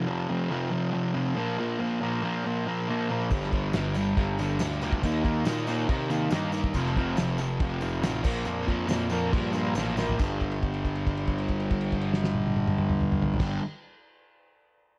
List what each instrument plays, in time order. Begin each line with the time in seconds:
0.07 distorted electric guitar F2 C3 F3
0.29 distorted electric guitar F2 C3 F3
0.50 distorted electric guitar F2 C3 F3
0.71 distorted electric guitar F2 C3 F3
0.92 distorted electric guitar F2 C3 F3
1.14 distorted electric guitar F2 C3 F3
1.36 distorted electric guitar A#2 F3 A#3
1.58 distorted electric guitar A#2 F3 A#3
1.79 distorted electric guitar A#2 F3 A#3
2.01 distorted electric guitar A#2 F3 A#3
2.22 distorted electric guitar A#2 F3 A#3
2.45 distorted electric guitar A#2 F3 A#3
2.67 distorted electric guitar A#2 F3 A#3
2.89 distorted electric guitar A#2 F3 A#3
3.09 distorted electric guitar A#2 F3 A#3
3.30 picked electric bass G1, distorted electric guitar G2 D3 G3, kick, tambourine, crash
3.43 snare
3.51 distorted electric guitar G2 D3 G3, kick, crash
3.73 picked electric bass G1, distorted electric guitar G2 D3 G3, snare, tambourine, crash
3.94 distorted electric guitar G2 D3 G3, tambourine, crash
4.16 picked electric bass G1, distorted electric guitar G2 D3 G3, kick, crash
4.39 distorted electric guitar G2 D3 G3, tambourine, crash
4.59 picked electric bass D2, distorted electric guitar G2, snare, tambourine, crash
4.63 distorted electric guitar D3 G3
4.72 snare
4.81 distorted electric guitar G2 D3 G3, tambourine, crash
4.92 kick
5.02 picked electric bass D#2, distorted electric guitar D#3 A#3 D#4, kick, tambourine, crash
5.24 distorted electric guitar D#3 A#3 D#4, kick, crash
5.45 picked electric bass A#2, distorted electric guitar D#3 A#3 D#4, snare, tambourine, crash
5.67 distorted electric guitar D#3 A#3 D#4, tambourine, crash
5.88 picked electric bass C3, distorted electric guitar D#3 A#3 D#4, kick, crash
6.09 distorted electric guitar D#3 A#3 D#4, tambourine, crash
6.30 picked electric bass G2, distorted electric guitar D#3 A#3 D#4, snare, tambourine, crash
6.52 distorted electric guitar D#3 A#3 D#4, tambourine, crash
6.64 kick
6.74 picked electric bass F1, distorted electric guitar F2 C3 F3, kick, tambourine, crash
6.86 snare
6.96 distorted electric guitar F2 C3 F3, kick, crash
7.17 picked electric bass F1, distorted electric guitar F2 C3 F3, snare, tambourine, crash
7.38 distorted electric guitar F2 C3 F3, tambourine, crash
7.60 picked electric bass F1, distorted electric guitar F2 C3 F3, kick, crash
7.81 distorted electric guitar F2 C3 F3, tambourine, crash
8.02 picked electric bass A1, distorted electric guitar F2 C3 F3, snare, tambourine, crash
8.23 picked electric bass A#1, distorted electric guitar A#2 F3 A#3, kick, tambourine, crash
8.45 picked electric bass F2, distorted electric guitar A#2 F3 A#3, tambourine, crash
8.67 distorted electric guitar A#2 F3 A#3, kick, tambourine, crash
8.88 picked electric bass F2, distorted electric guitar A#2 F3 A#3, snare, tambourine, crash
9.10 distorted electric guitar A#2 F3 A#3, tambourine, crash
9.32 picked electric bass G2, distorted electric guitar A#2 F3 A#3, kick, crash
9.53 distorted electric guitar A#2 F3 A#3, tambourine, crash
9.75 picked electric bass A1, distorted electric guitar A#2 F3 A#3, snare, tambourine, crash
9.88 snare
9.97 distorted electric guitar A#2 F3 A#3, snare, tambourine
10.09 floor tom
10.18 picked electric bass G1, distorted electric guitar G2 D3 G3, kick, crash, tambourine
10.41 kick, crash
10.51 crash
10.63 kick, crash
10.74 crash
10.85 kick, crash
10.95 crash
11.07 kick, crash
11.17 crash
11.27 kick, crash
11.38 crash
11.48 kick, crash
11.60 crash
11.70 kick, crash
11.81 crash
11.92 kick, crash
12.01 crash
12.13 snare
12.24 snare
12.35 high tom
12.47 high tom
12.57 high tom
12.67 mid tom
12.78 mid tom
12.89 mid tom
13.01 mid tom
13.12 mid tom
13.22 floor tom
13.34 floor tom
13.39 picked electric bass G1, distorted electric guitar G2 D3 G3, kick, snare, crash